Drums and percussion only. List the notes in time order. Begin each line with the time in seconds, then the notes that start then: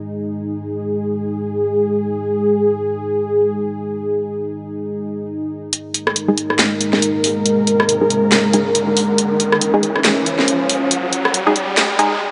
5.73 closed hi-hat
5.94 closed hi-hat
6.07 cross-stick
6.16 closed hi-hat
6.38 closed hi-hat
6.50 cross-stick
6.59 snare, closed hi-hat
6.81 closed hi-hat
6.93 snare
7.02 closed hi-hat
7.24 open hi-hat
7.46 closed hi-hat
7.67 closed hi-hat
7.80 cross-stick
7.89 closed hi-hat
8.10 closed hi-hat
8.32 snare, closed hi-hat
8.53 closed hi-hat
8.75 closed hi-hat
8.97 open hi-hat
9.18 closed hi-hat
9.40 closed hi-hat
9.52 cross-stick
9.61 closed hi-hat
9.83 closed hi-hat
9.96 cross-stick
10.05 snare, closed hi-hat
10.26 closed hi-hat
10.39 snare
10.48 closed hi-hat
10.69 open hi-hat
10.91 closed hi-hat
11.13 closed hi-hat
11.25 cross-stick
11.34 closed hi-hat
11.56 closed hi-hat
11.77 snare, closed hi-hat
11.99 closed hi-hat